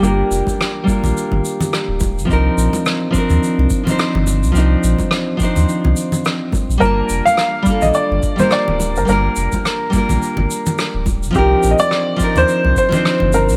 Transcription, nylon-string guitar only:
X:1
M:4/4
L:1/16
Q:"Swing 16ths" 1/4=106
K:Gm
V:1 name="Nylon-string guitar"
[G,B,DFB]6 [G,B,DFB]8- [G,B,DFB]2 | [F,CDEB]6 [F,CDEB]4- [F,CDEB] [F,CDEc]4- [F,CDEc] | [F,CDEc]6 [F,CDEc]8- [F,CDEc]2 | [G,B,DFa]6 [G,B,DFA]4- [G,B,DFA] [G,B,DFB]4- [G,B,DFB] |
[G,B,DFB]6 [G,B,DFB]8- [G,B,DFB]2 | [F,CDEB]6 [F,CDEB]4- [F,CDEB] [F,CDEc]4- [F,CDEc] |]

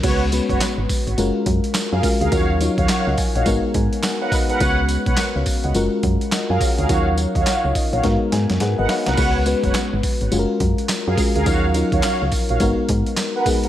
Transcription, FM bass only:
X:1
M:4/4
L:1/16
Q:"Swing 16ths" 1/4=105
K:G#dor
V:1 name="FM bass" clef=bass
C,,3 F,,, z G,,, z G,,, F,,, z F,, z2 F,, z =D,, | D,,3 D,, z C,, z A,,, G,,, z G,, z4 z | C,,3 B,,, z C,, z C,, F,,, z F,, z2 F,, z =D,, | D,,3 D,, z C,, z A,,, G,, z G,, F,, G,, G,,, z ^B,,, |
C,,3 F,,, z G,,, z G,,, F,,, z F,, z2 F,, z =D,, | D,,3 D,, z C,, z A,,, G,,, z G,, z4 z |]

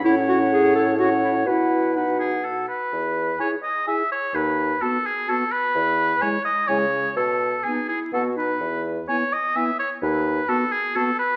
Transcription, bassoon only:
X:1
M:3/4
L:1/8
Q:1/4=127
K:E
V:1 name="Bassoon" clef=bass
A,,6 | B,,4- B,, z | E,,2 z4 | D,,2 z4 |
E,,2 z2 C,2 | B,,2 z2 B,,2 | E,,2 z4 | D,,2 z4 |]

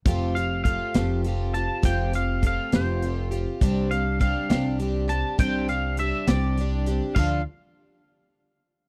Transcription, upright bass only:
X:1
M:6/8
L:1/8
Q:3/8=68
K:F
V:1 name="Upright bass" clef=bass
F,,,3 F,,,3 | F,,,3 F,,,3 | C,,3 C,,3 | C,,3 C,,3 |
D,, z4 z |]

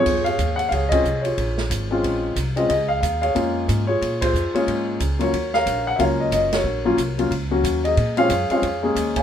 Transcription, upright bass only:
X:1
M:4/4
L:1/8
Q:"Swing" 1/4=182
K:Bbm
V:1 name="Upright bass" clef=bass
F,,2 E,,2 D,,2 C,,2 | B,,,2 A,,,2 B,,,2 C,,2 | D,,2 E,,2 F,,2 A,,2 | B,,2 F,, z A,,2 D,,2 |
E,,2 B,,,2 D,,2 G,,,2 | B,,,2 C,,2 D,,2 E,,2 | B,,2 G,, z F,,2 E,,2 |]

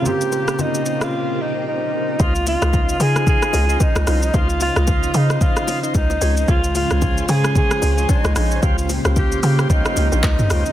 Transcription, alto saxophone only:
X:1
M:4/4
L:1/16
Q:"Swing 16ths" 1/4=112
K:Dblyd
V:1 name="Alto saxophone"
G4 E3 F3 E2 E4 | F2 F4 A2 A4 E4 | F2 F4 E2 F4 E4 | F2 F4 A2 A4 E4 |
F2 z2 G2 G2 E4 E4 |]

